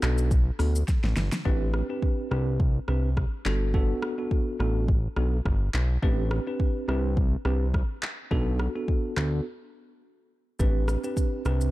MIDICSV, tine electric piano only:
0, 0, Header, 1, 2, 480
1, 0, Start_track
1, 0, Tempo, 571429
1, 1221, Time_signature, 4, 2, 24, 8
1, 9837, End_track
2, 0, Start_track
2, 0, Title_t, "Tine electric piano"
2, 0, Program_c, 0, 4
2, 19, Note_on_c, 0, 59, 78
2, 20, Note_on_c, 0, 62, 76
2, 23, Note_on_c, 0, 66, 75
2, 24, Note_on_c, 0, 69, 89
2, 243, Note_off_c, 0, 59, 0
2, 243, Note_off_c, 0, 62, 0
2, 245, Note_off_c, 0, 66, 0
2, 245, Note_off_c, 0, 69, 0
2, 498, Note_on_c, 0, 59, 77
2, 499, Note_on_c, 0, 62, 71
2, 502, Note_on_c, 0, 66, 73
2, 503, Note_on_c, 0, 69, 88
2, 662, Note_off_c, 0, 59, 0
2, 663, Note_off_c, 0, 62, 0
2, 664, Note_off_c, 0, 66, 0
2, 664, Note_off_c, 0, 69, 0
2, 1219, Note_on_c, 0, 60, 98
2, 1220, Note_on_c, 0, 62, 85
2, 1222, Note_on_c, 0, 67, 85
2, 1223, Note_on_c, 0, 71, 103
2, 1560, Note_off_c, 0, 60, 0
2, 1561, Note_off_c, 0, 62, 0
2, 1562, Note_off_c, 0, 67, 0
2, 1563, Note_off_c, 0, 71, 0
2, 1591, Note_on_c, 0, 60, 73
2, 1593, Note_on_c, 0, 62, 67
2, 1594, Note_on_c, 0, 67, 68
2, 1597, Note_on_c, 0, 71, 80
2, 1914, Note_off_c, 0, 60, 0
2, 1915, Note_off_c, 0, 62, 0
2, 1916, Note_off_c, 0, 67, 0
2, 1917, Note_off_c, 0, 71, 0
2, 1940, Note_on_c, 0, 60, 78
2, 1941, Note_on_c, 0, 62, 69
2, 1943, Note_on_c, 0, 67, 71
2, 1944, Note_on_c, 0, 71, 84
2, 2164, Note_off_c, 0, 60, 0
2, 2164, Note_off_c, 0, 62, 0
2, 2165, Note_off_c, 0, 67, 0
2, 2165, Note_off_c, 0, 71, 0
2, 2421, Note_on_c, 0, 60, 74
2, 2422, Note_on_c, 0, 62, 68
2, 2424, Note_on_c, 0, 67, 70
2, 2426, Note_on_c, 0, 71, 81
2, 2583, Note_off_c, 0, 60, 0
2, 2584, Note_off_c, 0, 62, 0
2, 2585, Note_off_c, 0, 67, 0
2, 2586, Note_off_c, 0, 71, 0
2, 2900, Note_on_c, 0, 59, 87
2, 2902, Note_on_c, 0, 62, 84
2, 2904, Note_on_c, 0, 66, 82
2, 2905, Note_on_c, 0, 69, 101
2, 3124, Note_off_c, 0, 59, 0
2, 3124, Note_off_c, 0, 62, 0
2, 3125, Note_off_c, 0, 66, 0
2, 3126, Note_off_c, 0, 69, 0
2, 3142, Note_on_c, 0, 59, 95
2, 3142, Note_on_c, 0, 62, 85
2, 3145, Note_on_c, 0, 66, 82
2, 3147, Note_on_c, 0, 69, 104
2, 3482, Note_off_c, 0, 59, 0
2, 3482, Note_off_c, 0, 62, 0
2, 3483, Note_off_c, 0, 66, 0
2, 3484, Note_off_c, 0, 69, 0
2, 3512, Note_on_c, 0, 59, 75
2, 3514, Note_on_c, 0, 62, 69
2, 3515, Note_on_c, 0, 66, 72
2, 3517, Note_on_c, 0, 69, 78
2, 3835, Note_off_c, 0, 59, 0
2, 3836, Note_off_c, 0, 62, 0
2, 3836, Note_off_c, 0, 66, 0
2, 3837, Note_off_c, 0, 69, 0
2, 3860, Note_on_c, 0, 59, 81
2, 3861, Note_on_c, 0, 62, 75
2, 3863, Note_on_c, 0, 66, 70
2, 3864, Note_on_c, 0, 69, 84
2, 4083, Note_off_c, 0, 59, 0
2, 4084, Note_off_c, 0, 62, 0
2, 4085, Note_off_c, 0, 66, 0
2, 4085, Note_off_c, 0, 69, 0
2, 4341, Note_on_c, 0, 59, 75
2, 4343, Note_on_c, 0, 62, 71
2, 4345, Note_on_c, 0, 66, 72
2, 4345, Note_on_c, 0, 69, 83
2, 4503, Note_off_c, 0, 59, 0
2, 4504, Note_off_c, 0, 62, 0
2, 4505, Note_off_c, 0, 66, 0
2, 4506, Note_off_c, 0, 69, 0
2, 5060, Note_on_c, 0, 60, 91
2, 5063, Note_on_c, 0, 62, 88
2, 5064, Note_on_c, 0, 67, 88
2, 5066, Note_on_c, 0, 71, 102
2, 5401, Note_off_c, 0, 60, 0
2, 5402, Note_off_c, 0, 62, 0
2, 5403, Note_off_c, 0, 67, 0
2, 5404, Note_off_c, 0, 71, 0
2, 5433, Note_on_c, 0, 60, 73
2, 5435, Note_on_c, 0, 62, 69
2, 5436, Note_on_c, 0, 67, 67
2, 5438, Note_on_c, 0, 71, 86
2, 5755, Note_off_c, 0, 60, 0
2, 5756, Note_off_c, 0, 62, 0
2, 5757, Note_off_c, 0, 67, 0
2, 5758, Note_off_c, 0, 71, 0
2, 5779, Note_on_c, 0, 60, 78
2, 5782, Note_on_c, 0, 62, 71
2, 5784, Note_on_c, 0, 67, 71
2, 5785, Note_on_c, 0, 71, 82
2, 6003, Note_off_c, 0, 60, 0
2, 6004, Note_off_c, 0, 62, 0
2, 6005, Note_off_c, 0, 67, 0
2, 6006, Note_off_c, 0, 71, 0
2, 6259, Note_on_c, 0, 60, 78
2, 6261, Note_on_c, 0, 62, 69
2, 6263, Note_on_c, 0, 67, 70
2, 6264, Note_on_c, 0, 71, 85
2, 6422, Note_off_c, 0, 60, 0
2, 6423, Note_off_c, 0, 62, 0
2, 6424, Note_off_c, 0, 67, 0
2, 6425, Note_off_c, 0, 71, 0
2, 6979, Note_on_c, 0, 59, 90
2, 6981, Note_on_c, 0, 62, 84
2, 6982, Note_on_c, 0, 66, 86
2, 6984, Note_on_c, 0, 69, 105
2, 7321, Note_off_c, 0, 59, 0
2, 7321, Note_off_c, 0, 62, 0
2, 7322, Note_off_c, 0, 66, 0
2, 7323, Note_off_c, 0, 69, 0
2, 7353, Note_on_c, 0, 59, 75
2, 7354, Note_on_c, 0, 62, 69
2, 7356, Note_on_c, 0, 66, 67
2, 7357, Note_on_c, 0, 69, 81
2, 7675, Note_off_c, 0, 59, 0
2, 7675, Note_off_c, 0, 62, 0
2, 7677, Note_off_c, 0, 66, 0
2, 7677, Note_off_c, 0, 69, 0
2, 7699, Note_on_c, 0, 59, 78
2, 7700, Note_on_c, 0, 62, 70
2, 7701, Note_on_c, 0, 66, 69
2, 7704, Note_on_c, 0, 69, 86
2, 7923, Note_off_c, 0, 59, 0
2, 7923, Note_off_c, 0, 62, 0
2, 7924, Note_off_c, 0, 66, 0
2, 7925, Note_off_c, 0, 69, 0
2, 8899, Note_on_c, 0, 60, 93
2, 8901, Note_on_c, 0, 62, 87
2, 8903, Note_on_c, 0, 67, 89
2, 8904, Note_on_c, 0, 71, 101
2, 9240, Note_off_c, 0, 60, 0
2, 9242, Note_off_c, 0, 62, 0
2, 9242, Note_off_c, 0, 67, 0
2, 9243, Note_off_c, 0, 71, 0
2, 9272, Note_on_c, 0, 60, 77
2, 9274, Note_on_c, 0, 62, 66
2, 9276, Note_on_c, 0, 67, 68
2, 9277, Note_on_c, 0, 71, 84
2, 9595, Note_off_c, 0, 60, 0
2, 9595, Note_off_c, 0, 62, 0
2, 9596, Note_off_c, 0, 67, 0
2, 9597, Note_off_c, 0, 71, 0
2, 9621, Note_on_c, 0, 60, 76
2, 9622, Note_on_c, 0, 62, 69
2, 9624, Note_on_c, 0, 67, 69
2, 9625, Note_on_c, 0, 71, 85
2, 9837, Note_off_c, 0, 60, 0
2, 9837, Note_off_c, 0, 62, 0
2, 9837, Note_off_c, 0, 67, 0
2, 9837, Note_off_c, 0, 71, 0
2, 9837, End_track
0, 0, End_of_file